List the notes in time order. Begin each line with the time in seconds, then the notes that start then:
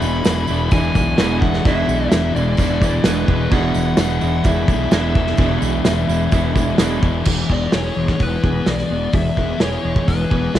Already playing: E2 B2 E3 G#3 D4 E4 B5
0.00 E1 B2 E3, tambourine
0.23 E1 E2 B2 E3, snare, tambourine, crash
0.47 E1 E2 B2 E3 G#3 D4 E4, tambourine
0.51 E3
0.71 E1 E2 B2 E3 G#3 D4 E4 G#5, kick, tambourine, crash
0.94 B1 E2 B2 E3 G#3 D4 E4, kick, tambourine
0.99 E3
1.18 E1 E2 B2 E3 G#3 D4 E4, snare, tambourine, crash
1.39 E3 D4 E4 F#5, kick
1.44 B2 E3 G#3
1.53 snare
1.64 E1 E2 B2 E3 G#3 E5, kick, tambourine, crash
1.68 D4 E4
1.88 B1 B2 E3, tambourine
2.09 E1 E2 B2 E5, snare, tambourine, crash
2.14 E3
2.34 E1 E2 B2 E3 D4 E4 D5, tambourine
2.38 E3 G#3
2.57 E1 E2 B2 E3 G#3 D4, kick, tambourine, crash
2.62 E4
2.81 E2 B2 E3 D4 E4, kick, tambourine
2.85 E3 G#3
3.04 E1 E2 B2 E3 G#3 D4 E4 B4, snare, tambourine, crash
3.08 E3
3.27 E1 E3 G#3 D4 E4, kick
3.31 B2
3.50 E1 E2 B2 E3 G#3 D4 E4 F#5, kick, tambourine, crash
3.55 E3
3.74 E1 B2 E3, tambourine
3.97 E1 E2 B2 E3 F#5, snare, tambourine, crash
4.19 E1 E2 B2 E3 G#3 D4 E4, tambourine
4.24 E3
4.43 E1 E2 B2 E3 G#3 D4 E4 E5, kick, tambourine, crash
4.68 B1 E2 B2 E3 G#3 D4 E4, kick, tambourine
4.91 E1 E2 B2 E3 G#3 D4 E4, snare, tambourine, crash
5.14 B2 E3 G#3 D4 E4, kick
5.27 snare
5.37 E1 E2 B2 E3 G#3 D4 E4, kick, tambourine, crash
5.60 B1 B2 E3, tambourine
5.85 E1 E2 B2 E3, snare, tambourine, crash
6.08 E1 E2 B2 E3 G#3 D4 E4, tambourine
6.31 E1 E2 B2 E3 G#3 D4 E4, kick, tambourine, crash
6.54 E2 B2 E3 G#3 D4 E4, kick, tambourine
6.78 E1 E2 B2 E3 G#3 D4 E4, snare, tambourine, crash
6.82 E3
7.01 E1 B2 E3 G#3 D4 E4, kick, tambourine
7.25 E1 E2 E3, kick, crash
7.49 E1 G#3 B3 D5, kick
7.72 E1 E4 G#4 C#5, snare, open hi-hat
7.96 E1 E3 G#3
8.08 kick, snare
8.19 E1 B3 E4 B4, kick, open hi-hat
8.43 E1 B3 G#4, kick
8.66 B1 E3 G#3 D5, snare, open hi-hat
8.78 snare
8.90 E1 B3
9.13 E1 E2 E3 E5, kick, open hi-hat
9.37 E1 G#3 B3, kick
9.60 E1 E4 G#4 C#5, snare, open hi-hat
9.84 E1 E3 G#3
9.96 kick
10.06 E1 B3 E4 B4, kick, open hi-hat
10.30 E1 B3 G#4, kick
10.53 B1 E3 G#3, snare, open hi-hat